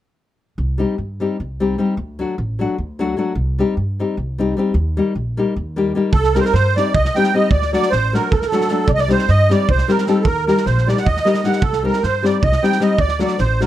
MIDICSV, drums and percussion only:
0, 0, Header, 1, 2, 480
1, 0, Start_track
1, 0, Tempo, 396825
1, 697, Time_signature, 7, 3, 24, 8
1, 8374, Tempo, 391134
1, 16649, End_track
2, 0, Start_track
2, 0, Title_t, "Drums"
2, 7411, Note_on_c, 9, 36, 83
2, 7532, Note_off_c, 9, 36, 0
2, 7544, Note_on_c, 9, 38, 20
2, 7665, Note_off_c, 9, 38, 0
2, 7680, Note_on_c, 9, 38, 27
2, 7800, Note_off_c, 9, 38, 0
2, 7800, Note_on_c, 9, 38, 23
2, 7919, Note_off_c, 9, 38, 0
2, 7919, Note_on_c, 9, 38, 25
2, 8039, Note_off_c, 9, 38, 0
2, 8185, Note_on_c, 9, 38, 28
2, 8306, Note_off_c, 9, 38, 0
2, 8401, Note_on_c, 9, 36, 84
2, 8524, Note_off_c, 9, 36, 0
2, 8530, Note_on_c, 9, 38, 26
2, 8649, Note_off_c, 9, 38, 0
2, 8649, Note_on_c, 9, 38, 23
2, 8759, Note_off_c, 9, 38, 0
2, 8759, Note_on_c, 9, 38, 24
2, 8882, Note_off_c, 9, 38, 0
2, 9091, Note_on_c, 9, 36, 84
2, 9214, Note_off_c, 9, 36, 0
2, 9229, Note_on_c, 9, 38, 21
2, 9351, Note_off_c, 9, 38, 0
2, 9367, Note_on_c, 9, 38, 24
2, 9480, Note_off_c, 9, 38, 0
2, 9480, Note_on_c, 9, 38, 24
2, 9596, Note_off_c, 9, 38, 0
2, 9596, Note_on_c, 9, 38, 29
2, 9719, Note_off_c, 9, 38, 0
2, 9871, Note_on_c, 9, 38, 25
2, 9993, Note_off_c, 9, 38, 0
2, 10087, Note_on_c, 9, 36, 84
2, 10210, Note_off_c, 9, 36, 0
2, 10210, Note_on_c, 9, 38, 24
2, 10332, Note_off_c, 9, 38, 0
2, 10334, Note_on_c, 9, 38, 26
2, 10444, Note_off_c, 9, 38, 0
2, 10444, Note_on_c, 9, 38, 27
2, 10533, Note_off_c, 9, 38, 0
2, 10533, Note_on_c, 9, 38, 24
2, 10656, Note_off_c, 9, 38, 0
2, 10772, Note_on_c, 9, 36, 81
2, 10894, Note_off_c, 9, 36, 0
2, 10901, Note_on_c, 9, 38, 23
2, 11024, Note_off_c, 9, 38, 0
2, 11040, Note_on_c, 9, 38, 25
2, 11150, Note_off_c, 9, 38, 0
2, 11150, Note_on_c, 9, 38, 24
2, 11266, Note_off_c, 9, 38, 0
2, 11266, Note_on_c, 9, 38, 27
2, 11389, Note_off_c, 9, 38, 0
2, 11539, Note_on_c, 9, 38, 27
2, 11662, Note_off_c, 9, 38, 0
2, 11766, Note_on_c, 9, 36, 71
2, 11880, Note_on_c, 9, 38, 24
2, 11889, Note_off_c, 9, 36, 0
2, 12003, Note_off_c, 9, 38, 0
2, 12015, Note_on_c, 9, 38, 23
2, 12125, Note_off_c, 9, 38, 0
2, 12125, Note_on_c, 9, 38, 30
2, 12233, Note_off_c, 9, 38, 0
2, 12233, Note_on_c, 9, 38, 24
2, 12356, Note_off_c, 9, 38, 0
2, 12457, Note_on_c, 9, 36, 82
2, 12580, Note_off_c, 9, 36, 0
2, 12736, Note_on_c, 9, 38, 23
2, 12855, Note_off_c, 9, 38, 0
2, 12855, Note_on_c, 9, 38, 27
2, 12962, Note_off_c, 9, 38, 0
2, 12962, Note_on_c, 9, 38, 29
2, 13085, Note_off_c, 9, 38, 0
2, 13104, Note_on_c, 9, 38, 21
2, 13227, Note_off_c, 9, 38, 0
2, 13236, Note_on_c, 9, 38, 27
2, 13342, Note_off_c, 9, 38, 0
2, 13342, Note_on_c, 9, 38, 25
2, 13456, Note_on_c, 9, 36, 78
2, 13465, Note_off_c, 9, 38, 0
2, 13579, Note_off_c, 9, 36, 0
2, 13580, Note_on_c, 9, 38, 25
2, 13697, Note_off_c, 9, 38, 0
2, 13697, Note_on_c, 9, 38, 25
2, 13797, Note_off_c, 9, 38, 0
2, 13797, Note_on_c, 9, 38, 27
2, 13916, Note_off_c, 9, 38, 0
2, 13916, Note_on_c, 9, 38, 29
2, 14021, Note_off_c, 9, 38, 0
2, 14021, Note_on_c, 9, 38, 26
2, 14139, Note_on_c, 9, 36, 90
2, 14144, Note_off_c, 9, 38, 0
2, 14262, Note_off_c, 9, 36, 0
2, 14270, Note_on_c, 9, 38, 29
2, 14393, Note_off_c, 9, 38, 0
2, 14518, Note_on_c, 9, 38, 23
2, 14641, Note_off_c, 9, 38, 0
2, 14643, Note_on_c, 9, 38, 29
2, 14765, Note_off_c, 9, 38, 0
2, 14907, Note_on_c, 9, 38, 28
2, 15030, Note_off_c, 9, 38, 0
2, 15129, Note_on_c, 9, 36, 84
2, 15246, Note_on_c, 9, 38, 26
2, 15252, Note_off_c, 9, 36, 0
2, 15369, Note_off_c, 9, 38, 0
2, 15385, Note_on_c, 9, 38, 27
2, 15489, Note_off_c, 9, 38, 0
2, 15489, Note_on_c, 9, 38, 25
2, 15595, Note_off_c, 9, 38, 0
2, 15595, Note_on_c, 9, 38, 26
2, 15718, Note_off_c, 9, 38, 0
2, 15813, Note_on_c, 9, 36, 77
2, 15935, Note_on_c, 9, 38, 23
2, 15936, Note_off_c, 9, 36, 0
2, 16058, Note_off_c, 9, 38, 0
2, 16068, Note_on_c, 9, 38, 28
2, 16171, Note_off_c, 9, 38, 0
2, 16171, Note_on_c, 9, 38, 26
2, 16294, Note_off_c, 9, 38, 0
2, 16299, Note_on_c, 9, 38, 27
2, 16422, Note_off_c, 9, 38, 0
2, 16578, Note_on_c, 9, 38, 26
2, 16649, Note_off_c, 9, 38, 0
2, 16649, End_track
0, 0, End_of_file